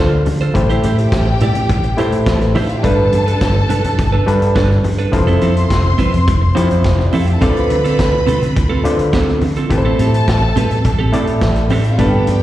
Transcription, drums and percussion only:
0.26 open hi-hat medium
0.26 muted conga soft
0.26 high conga medium
0.40 closed hi-hat soft
0.55 kick medium
0.55 closed hi-hat medium
0.55 low conga medium
0.70 closed hi-hat soft
0.83 closed hi-hat medium
0.83 muted conga soft
0.83 high conga medium
0.98 closed hi-hat soft
1.12 kick loud
1.12 snare loud
1.12 closed hi-hat medium
1.12 muted conga soft
1.26 high conga medium
1.40 closed hi-hat medium
1.40 muted conga soft
1.40 low conga medium
1.55 closed hi-hat soft
1.55 high conga medium
1.69 kick loud
1.69 closed hi-hat medium
1.69 low conga medium
1.83 closed hi-hat soft
1.98 closed hi-hat medium
1.98 muted conga soft
2.12 closed hi-hat soft
2.26 kick loud
2.26 snare loud
2.26 closed hi-hat medium
2.26 muted conga soft
2.41 snare soft
2.41 closed hi-hat soft
2.55 open hi-hat medium
2.55 muted conga soft
2.55 high conga medium
2.69 closed hi-hat soft
2.84 kick loud
2.84 closed hi-hat medium
2.84 muted conga soft
2.84 low conga medium
3.12 closed hi-hat medium
3.12 muted conga soft
3.12 high conga medium
3.27 closed hi-hat soft
3.41 kick loud
3.41 snare loud
3.41 closed hi-hat medium
3.54 high conga medium
3.69 closed hi-hat medium
3.69 muted conga soft
3.69 low conga medium
3.84 closed hi-hat soft
3.84 high conga medium
3.98 kick loud
3.98 closed hi-hat medium
3.98 low conga medium
4.28 closed hi-hat medium
4.42 closed hi-hat soft
4.56 kick loud
4.56 snare loud
4.56 closed hi-hat medium
4.71 snare soft
4.84 open hi-hat medium
4.84 muted conga soft
4.84 high conga medium
4.99 closed hi-hat soft
5.13 kick medium
5.13 closed hi-hat medium
5.13 muted conga soft
5.13 low conga medium
5.27 closed hi-hat soft
5.41 closed hi-hat medium
5.41 muted conga soft
5.41 high conga medium
5.57 closed hi-hat soft
5.70 kick medium
5.70 snare loud
5.70 closed hi-hat medium
5.83 high conga medium
5.99 kick medium
5.99 closed hi-hat medium
5.99 muted conga soft
5.99 low conga medium
6.13 closed hi-hat soft
6.13 high conga medium
6.27 kick loud
6.27 closed hi-hat medium
6.27 low conga medium
6.57 closed hi-hat medium
6.71 closed hi-hat soft
6.84 kick loud
6.84 snare loud
6.84 closed hi-hat medium
6.84 muted conga soft
6.99 snare soft
6.99 high conga medium
7.13 open hi-hat medium
7.13 muted conga soft
7.13 high conga medium
7.27 closed hi-hat soft
7.41 kick loud
7.41 closed hi-hat medium
7.41 muted conga soft
7.41 low conga medium
7.56 closed hi-hat soft
7.70 closed hi-hat medium
7.70 high conga medium
7.85 closed hi-hat soft
7.99 kick loud
7.99 snare loud
7.99 closed hi-hat medium
7.99 muted conga soft
8.12 high conga medium
8.27 closed hi-hat medium
8.27 muted conga soft
8.27 low conga medium
8.42 closed hi-hat soft
8.42 high conga medium
8.56 kick loud
8.56 closed hi-hat medium
8.56 low conga medium
8.85 closed hi-hat medium
8.85 muted conga soft
8.99 closed hi-hat soft
9.13 kick loud
9.13 snare loud
9.13 closed hi-hat medium
9.13 muted conga soft
9.28 snare soft
9.41 open hi-hat medium
9.41 muted conga soft
9.41 high conga medium
9.56 closed hi-hat soft
9.70 kick medium
9.70 closed hi-hat medium
9.70 muted conga soft
9.70 low conga medium
9.99 closed hi-hat medium
9.99 muted conga soft
9.99 high conga medium
10.14 closed hi-hat soft
10.28 kick medium
10.28 snare loud
10.28 closed hi-hat medium
10.28 muted conga soft
10.41 high conga medium
10.56 closed hi-hat medium
10.56 muted conga soft
10.56 low conga medium
10.71 closed hi-hat soft
10.71 high conga medium
10.85 kick medium
10.85 closed hi-hat medium
10.85 muted conga soft
10.85 low conga medium
11.13 closed hi-hat medium
11.13 muted conga soft
11.27 closed hi-hat soft
11.41 kick loud
11.41 snare loud
11.41 closed hi-hat medium
11.41 muted conga soft
11.56 snare soft
11.56 closed hi-hat soft
11.70 open hi-hat medium
11.70 muted conga soft
11.70 high conga medium
11.84 closed hi-hat soft
11.98 kick medium
11.98 closed hi-hat medium
11.98 low conga medium
12.27 closed hi-hat medium
12.27 muted conga soft
12.27 high conga medium

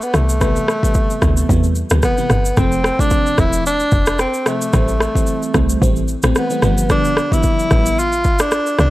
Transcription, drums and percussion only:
0.02 shaker medium
0.14 cross-stick medium
0.14 shaker medium
0.29 shaker medium
0.41 kick loud
0.41 cross-stick medium
0.41 shaker medium
0.56 shaker medium
0.68 cross-stick medium
0.68 shaker soft
0.83 kick medium
0.83 shaker medium
0.94 kick loud
0.94 shaker medium
1.10 shaker medium
1.22 kick loud
1.22 cross-stick medium
1.22 shaker medium
1.37 shaker loud
1.49 kick medium
1.49 shaker medium
1.63 shaker soft
1.75 shaker medium
1.90 cross-stick loud
1.90 shaker medium
2.03 kick medium
2.03 cross-stick medium
2.03 shaker medium
2.17 shaker medium
2.30 cross-stick medium
2.30 shaker medium
2.45 shaker medium
2.57 kick loud
2.57 cross-stick loud
2.57 shaker medium
2.72 shaker medium
2.84 cross-stick loud
2.84 shaker soft
2.99 kick medium
2.99 shaker medium
3.10 kick medium
3.10 shaker medium
3.26 shaker soft
3.38 kick loud
3.38 cross-stick medium
3.38 shaker medium
3.53 shaker loud
3.66 shaker medium
3.80 shaker soft
3.92 kick medium
3.92 shaker soft
4.06 cross-stick loud
4.06 shaker medium
4.19 cross-stick medium
4.19 shaker medium
4.34 shaker medium
4.46 cross-stick medium
4.46 shaker medium
4.62 shaker medium
4.73 kick loud
4.73 cross-stick loud
4.73 shaker medium
4.88 shaker medium
5.01 cross-stick medium
5.01 shaker soft
5.15 kick medium
5.15 shaker medium
5.27 shaker medium
5.43 shaker medium
5.54 kick medium
5.54 cross-stick medium
5.54 shaker medium
5.70 shaker loud
5.82 kick medium
5.82 shaker medium
5.96 shaker soft
6.08 shaker soft
6.23 cross-stick loud
6.23 shaker medium
6.35 cross-stick medium
6.35 shaker medium
6.50 shaker medium
6.62 cross-stick medium
6.62 shaker medium
6.78 shaker medium
6.90 kick loud
6.90 cross-stick medium
6.90 shaker medium
7.05 shaker medium
7.17 cross-stick medium
7.17 shaker soft
7.32 kick medium
7.32 shaker medium
7.43 kick medium
7.43 shaker medium
7.59 shaker medium
7.71 kick loud
7.71 cross-stick medium
7.71 shaker medium
7.86 shaker loud
7.99 shaker medium
8.12 shaker medium
8.24 kick medium
8.24 shaker soft
8.39 cross-stick loud
8.39 shaker medium
8.51 cross-stick medium
8.51 shaker medium
8.66 shaker medium
8.79 cross-stick medium
8.79 shaker medium

